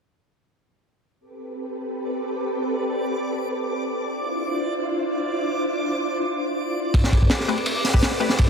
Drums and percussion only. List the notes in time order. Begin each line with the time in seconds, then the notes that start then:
6.94 kick, ride
7.04 snare
7.12 kick, ride
7.22 kick
7.30 snare, ride
7.40 snare
7.49 ride
7.58 ride
7.66 ride
7.84 snare, open hi-hat
7.94 kick
8.03 snare, ride
8.11 snare
8.20 ride
8.29 snare
8.38 kick, ride